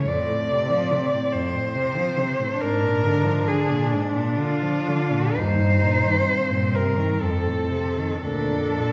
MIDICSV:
0, 0, Header, 1, 5, 480
1, 0, Start_track
1, 0, Key_signature, -2, "major"
1, 0, Tempo, 843882
1, 43, Time_signature, 3, 2, 24, 8
1, 1482, Tempo, 886263
1, 2442, Tempo, 985222
1, 2922, Tempo, 925926
1, 3882, Tempo, 1006711
1, 4362, Tempo, 1079137
1, 4674, End_track
2, 0, Start_track
2, 0, Title_t, "Cello"
2, 0, Program_c, 0, 42
2, 43, Note_on_c, 0, 74, 56
2, 755, Note_on_c, 0, 72, 57
2, 764, Note_off_c, 0, 74, 0
2, 1483, Note_on_c, 0, 70, 60
2, 1491, Note_off_c, 0, 72, 0
2, 1954, Note_on_c, 0, 68, 48
2, 1962, Note_off_c, 0, 70, 0
2, 2196, Note_off_c, 0, 68, 0
2, 2443, Note_on_c, 0, 65, 50
2, 2919, Note_on_c, 0, 72, 63
2, 2927, Note_off_c, 0, 65, 0
2, 3642, Note_on_c, 0, 70, 47
2, 3650, Note_off_c, 0, 72, 0
2, 3883, Note_on_c, 0, 69, 48
2, 3891, Note_off_c, 0, 70, 0
2, 4357, Note_off_c, 0, 69, 0
2, 4360, Note_on_c, 0, 69, 53
2, 4674, Note_off_c, 0, 69, 0
2, 4674, End_track
3, 0, Start_track
3, 0, Title_t, "Cello"
3, 0, Program_c, 1, 42
3, 53, Note_on_c, 1, 60, 43
3, 1465, Note_off_c, 1, 60, 0
3, 1483, Note_on_c, 1, 62, 44
3, 2925, Note_on_c, 1, 63, 45
3, 2932, Note_off_c, 1, 62, 0
3, 3383, Note_off_c, 1, 63, 0
3, 3386, Note_on_c, 1, 60, 44
3, 4339, Note_off_c, 1, 60, 0
3, 4366, Note_on_c, 1, 62, 39
3, 4674, Note_off_c, 1, 62, 0
3, 4674, End_track
4, 0, Start_track
4, 0, Title_t, "Cello"
4, 0, Program_c, 2, 42
4, 46, Note_on_c, 2, 41, 32
4, 164, Note_on_c, 2, 45, 30
4, 173, Note_off_c, 2, 41, 0
4, 292, Note_on_c, 2, 48, 35
4, 300, Note_off_c, 2, 45, 0
4, 405, Note_on_c, 2, 53, 39
4, 414, Note_off_c, 2, 48, 0
4, 526, Note_on_c, 2, 48, 35
4, 535, Note_off_c, 2, 53, 0
4, 647, Note_on_c, 2, 45, 34
4, 656, Note_off_c, 2, 48, 0
4, 765, Note_on_c, 2, 41, 37
4, 774, Note_off_c, 2, 45, 0
4, 876, Note_on_c, 2, 45, 34
4, 884, Note_off_c, 2, 41, 0
4, 998, Note_on_c, 2, 48, 38
4, 1006, Note_off_c, 2, 45, 0
4, 1118, Note_on_c, 2, 53, 38
4, 1126, Note_off_c, 2, 48, 0
4, 1242, Note_on_c, 2, 48, 38
4, 1250, Note_off_c, 2, 53, 0
4, 1362, Note_on_c, 2, 45, 34
4, 1370, Note_off_c, 2, 48, 0
4, 1481, Note_off_c, 2, 45, 0
4, 1484, Note_on_c, 2, 44, 34
4, 1601, Note_on_c, 2, 46, 32
4, 1609, Note_off_c, 2, 44, 0
4, 1719, Note_on_c, 2, 50, 36
4, 1728, Note_off_c, 2, 46, 0
4, 1835, Note_on_c, 2, 53, 34
4, 1843, Note_off_c, 2, 50, 0
4, 1953, Note_on_c, 2, 50, 38
4, 1961, Note_off_c, 2, 53, 0
4, 2081, Note_on_c, 2, 46, 38
4, 2089, Note_off_c, 2, 50, 0
4, 2199, Note_on_c, 2, 44, 37
4, 2207, Note_off_c, 2, 46, 0
4, 2319, Note_on_c, 2, 46, 36
4, 2327, Note_off_c, 2, 44, 0
4, 2445, Note_on_c, 2, 50, 37
4, 2453, Note_off_c, 2, 46, 0
4, 2560, Note_on_c, 2, 53, 37
4, 2567, Note_off_c, 2, 50, 0
4, 2687, Note_on_c, 2, 50, 39
4, 2695, Note_off_c, 2, 53, 0
4, 2804, Note_on_c, 2, 46, 37
4, 2812, Note_off_c, 2, 50, 0
4, 2922, Note_off_c, 2, 46, 0
4, 2927, Note_on_c, 2, 39, 36
4, 3046, Note_on_c, 2, 43, 34
4, 3054, Note_off_c, 2, 39, 0
4, 3164, Note_on_c, 2, 46, 34
4, 3171, Note_off_c, 2, 43, 0
4, 3280, Note_on_c, 2, 51, 34
4, 3288, Note_off_c, 2, 46, 0
4, 3395, Note_off_c, 2, 51, 0
4, 3398, Note_on_c, 2, 43, 35
4, 3516, Note_on_c, 2, 46, 32
4, 3524, Note_off_c, 2, 43, 0
4, 3639, Note_on_c, 2, 48, 34
4, 3647, Note_off_c, 2, 46, 0
4, 3760, Note_on_c, 2, 51, 31
4, 3768, Note_off_c, 2, 48, 0
4, 3883, Note_off_c, 2, 51, 0
4, 3890, Note_on_c, 2, 41, 34
4, 3996, Note_on_c, 2, 45, 32
4, 4003, Note_off_c, 2, 41, 0
4, 4119, Note_on_c, 2, 48, 31
4, 4126, Note_off_c, 2, 45, 0
4, 4244, Note_on_c, 2, 51, 27
4, 4251, Note_off_c, 2, 48, 0
4, 4364, Note_off_c, 2, 51, 0
4, 4367, Note_on_c, 2, 38, 32
4, 4494, Note_on_c, 2, 41, 28
4, 4500, Note_off_c, 2, 38, 0
4, 4615, Note_on_c, 2, 46, 29
4, 4621, Note_off_c, 2, 41, 0
4, 4674, Note_off_c, 2, 46, 0
4, 4674, End_track
5, 0, Start_track
5, 0, Title_t, "Cello"
5, 0, Program_c, 3, 42
5, 40, Note_on_c, 3, 45, 41
5, 442, Note_off_c, 3, 45, 0
5, 1481, Note_on_c, 3, 44, 45
5, 1877, Note_off_c, 3, 44, 0
5, 2918, Note_on_c, 3, 43, 46
5, 3314, Note_off_c, 3, 43, 0
5, 3388, Note_on_c, 3, 43, 40
5, 3796, Note_off_c, 3, 43, 0
5, 3872, Note_on_c, 3, 41, 35
5, 4273, Note_off_c, 3, 41, 0
5, 4354, Note_on_c, 3, 46, 36
5, 4674, Note_off_c, 3, 46, 0
5, 4674, End_track
0, 0, End_of_file